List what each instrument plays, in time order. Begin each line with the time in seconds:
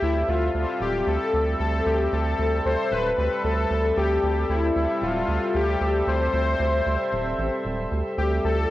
Already playing: analog synth pad E5
0.02 analog synth bass D2, analog synth pad G3 C4 A4, supersaw synth E4
0.28 analog synth bass D2, supersaw synth F4
0.55 analog synth bass D2
0.81 analog synth bass D1, supersaw synth G4
1.07 analog synth bass D2, supersaw synth A4
1.34 analog synth bass D2
1.60 analog synth bass D2, supersaw synth A4
1.86 analog synth bass D2, supersaw synth G4
2.12 analog synth bass D2, supersaw synth A4
2.39 analog synth bass D2
2.65 analog synth bass D2, supersaw synth C5
2.92 analog synth bass D1, supersaw synth B4
3.18 analog synth bass D2
3.44 analog synth bass D2, supersaw synth A4
3.70 analog synth bass D2
3.97 analog synth bass D2, supersaw synth G4
4.23 analog synth bass D2, analog synth pad C4 E5
4.49 analog synth bass D2, supersaw synth E4
4.76 analog synth bass D2
5.02 analog synth bass D1, supersaw synth F4
5.28 analog synth bass D2
5.55 analog synth bass D2, supersaw synth G4
5.81 analog synth bass D2
6.07 analog synth bass D2, supersaw synth C5
6.33 analog synth bass D2
6.60 analog synth bass D2
6.86 analog synth bass D2
7.13 analog synth bass D1
7.39 analog synth bass A1
7.65 analog synth bass D1
7.92 analog synth bass D2
8.18 analog synth bass D2, supersaw synth G4
8.44 analog synth bass D2, analog synth pad A3 D4 F4 D5, supersaw synth A4